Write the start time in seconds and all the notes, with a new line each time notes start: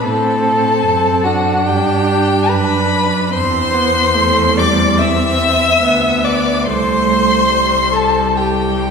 0.04 A2 C4 A4 A5
0.86 F#2 C4
1.24 D4 F#4 F#5
1.66 G2 G4 G5
2.48 F#2 D4 B4 B5
3.33 E2 C4 C5 C6
3.74 B3
4.16 A3
4.57 G3 D5 D6
5.00 C4 E5 E6
5.84 D2 B3
6.24 D5 D6
6.65 C2 A3 C5 C6
7.53 G3
7.92 A4 A5
8.36 G4 G5